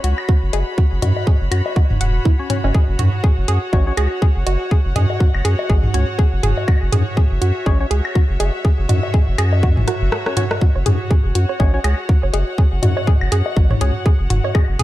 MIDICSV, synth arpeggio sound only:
0, 0, Header, 1, 2, 480
1, 0, Start_track
1, 0, Tempo, 491803
1, 759, Time_signature, 4, 2, 24, 8
1, 14475, End_track
2, 0, Start_track
2, 0, Title_t, "Synth arpeggio sound"
2, 0, Program_c, 0, 84
2, 39, Note_on_c, 0, 66, 75
2, 93, Note_off_c, 0, 66, 0
2, 279, Note_on_c, 0, 66, 78
2, 301, Note_off_c, 0, 66, 0
2, 519, Note_on_c, 0, 68, 98
2, 555, Note_off_c, 0, 68, 0
2, 759, Note_on_c, 0, 66, 80
2, 813, Note_off_c, 0, 66, 0
2, 998, Note_on_c, 0, 66, 75
2, 1021, Note_off_c, 0, 66, 0
2, 1238, Note_on_c, 0, 68, 96
2, 1275, Note_off_c, 0, 68, 0
2, 1478, Note_on_c, 0, 66, 77
2, 1533, Note_off_c, 0, 66, 0
2, 1719, Note_on_c, 0, 66, 82
2, 1741, Note_off_c, 0, 66, 0
2, 1959, Note_on_c, 0, 78, 75
2, 1981, Note_off_c, 0, 78, 0
2, 2199, Note_on_c, 0, 64, 80
2, 2235, Note_off_c, 0, 64, 0
2, 2438, Note_on_c, 0, 61, 73
2, 2475, Note_off_c, 0, 61, 0
2, 2578, Note_on_c, 0, 61, 77
2, 2597, Note_off_c, 0, 61, 0
2, 2679, Note_on_c, 0, 68, 100
2, 2715, Note_off_c, 0, 68, 0
2, 2920, Note_on_c, 0, 66, 77
2, 2974, Note_off_c, 0, 66, 0
2, 3159, Note_on_c, 0, 68, 95
2, 3195, Note_off_c, 0, 68, 0
2, 3398, Note_on_c, 0, 68, 100
2, 3435, Note_off_c, 0, 68, 0
2, 3639, Note_on_c, 0, 66, 82
2, 3693, Note_off_c, 0, 66, 0
2, 3878, Note_on_c, 0, 68, 102
2, 3915, Note_off_c, 0, 68, 0
2, 4118, Note_on_c, 0, 68, 99
2, 4155, Note_off_c, 0, 68, 0
2, 4358, Note_on_c, 0, 66, 75
2, 4413, Note_off_c, 0, 66, 0
2, 4598, Note_on_c, 0, 68, 102
2, 4635, Note_off_c, 0, 68, 0
2, 4839, Note_on_c, 0, 68, 101
2, 4875, Note_off_c, 0, 68, 0
2, 5078, Note_on_c, 0, 66, 80
2, 5133, Note_off_c, 0, 66, 0
2, 5318, Note_on_c, 0, 68, 97
2, 5355, Note_off_c, 0, 68, 0
2, 5559, Note_on_c, 0, 68, 100
2, 5595, Note_off_c, 0, 68, 0
2, 5799, Note_on_c, 0, 66, 75
2, 5853, Note_off_c, 0, 66, 0
2, 6037, Note_on_c, 0, 68, 101
2, 6074, Note_off_c, 0, 68, 0
2, 6278, Note_on_c, 0, 68, 96
2, 6315, Note_off_c, 0, 68, 0
2, 6518, Note_on_c, 0, 66, 81
2, 6573, Note_off_c, 0, 66, 0
2, 6758, Note_on_c, 0, 68, 101
2, 6795, Note_off_c, 0, 68, 0
2, 6998, Note_on_c, 0, 68, 96
2, 7035, Note_off_c, 0, 68, 0
2, 7237, Note_on_c, 0, 66, 76
2, 7292, Note_off_c, 0, 66, 0
2, 7478, Note_on_c, 0, 68, 103
2, 7515, Note_off_c, 0, 68, 0
2, 7718, Note_on_c, 0, 68, 98
2, 7755, Note_off_c, 0, 68, 0
2, 7957, Note_on_c, 0, 66, 83
2, 8012, Note_off_c, 0, 66, 0
2, 8198, Note_on_c, 0, 68, 100
2, 8235, Note_off_c, 0, 68, 0
2, 8438, Note_on_c, 0, 68, 100
2, 8475, Note_off_c, 0, 68, 0
2, 8678, Note_on_c, 0, 66, 75
2, 8733, Note_off_c, 0, 66, 0
2, 8918, Note_on_c, 0, 68, 100
2, 8955, Note_off_c, 0, 68, 0
2, 9158, Note_on_c, 0, 68, 103
2, 9195, Note_off_c, 0, 68, 0
2, 9399, Note_on_c, 0, 66, 86
2, 9453, Note_off_c, 0, 66, 0
2, 9640, Note_on_c, 0, 66, 75
2, 9661, Note_off_c, 0, 66, 0
2, 9879, Note_on_c, 0, 69, 81
2, 9915, Note_off_c, 0, 69, 0
2, 10120, Note_on_c, 0, 66, 72
2, 10141, Note_off_c, 0, 66, 0
2, 10360, Note_on_c, 0, 66, 80
2, 10414, Note_off_c, 0, 66, 0
2, 10498, Note_on_c, 0, 73, 76
2, 10524, Note_off_c, 0, 73, 0
2, 10599, Note_on_c, 0, 68, 103
2, 10635, Note_off_c, 0, 68, 0
2, 10839, Note_on_c, 0, 68, 98
2, 10875, Note_off_c, 0, 68, 0
2, 11080, Note_on_c, 0, 66, 73
2, 11134, Note_off_c, 0, 66, 0
2, 11217, Note_on_c, 0, 73, 76
2, 11244, Note_off_c, 0, 73, 0
2, 11319, Note_on_c, 0, 68, 101
2, 11355, Note_off_c, 0, 68, 0
2, 11559, Note_on_c, 0, 68, 99
2, 11595, Note_off_c, 0, 68, 0
2, 11800, Note_on_c, 0, 66, 79
2, 11854, Note_off_c, 0, 66, 0
2, 11939, Note_on_c, 0, 73, 76
2, 11965, Note_off_c, 0, 73, 0
2, 12040, Note_on_c, 0, 68, 99
2, 12076, Note_off_c, 0, 68, 0
2, 12279, Note_on_c, 0, 68, 99
2, 12315, Note_off_c, 0, 68, 0
2, 12519, Note_on_c, 0, 66, 76
2, 12573, Note_off_c, 0, 66, 0
2, 12658, Note_on_c, 0, 73, 76
2, 12684, Note_off_c, 0, 73, 0
2, 12758, Note_on_c, 0, 68, 100
2, 12795, Note_off_c, 0, 68, 0
2, 12999, Note_on_c, 0, 68, 98
2, 13035, Note_off_c, 0, 68, 0
2, 13239, Note_on_c, 0, 66, 85
2, 13293, Note_off_c, 0, 66, 0
2, 13377, Note_on_c, 0, 73, 79
2, 13404, Note_off_c, 0, 73, 0
2, 13480, Note_on_c, 0, 68, 100
2, 13516, Note_off_c, 0, 68, 0
2, 13719, Note_on_c, 0, 68, 103
2, 13755, Note_off_c, 0, 68, 0
2, 13959, Note_on_c, 0, 66, 74
2, 14013, Note_off_c, 0, 66, 0
2, 14098, Note_on_c, 0, 73, 77
2, 14124, Note_off_c, 0, 73, 0
2, 14198, Note_on_c, 0, 68, 101
2, 14235, Note_off_c, 0, 68, 0
2, 14438, Note_on_c, 0, 68, 102
2, 14475, Note_off_c, 0, 68, 0
2, 14475, End_track
0, 0, End_of_file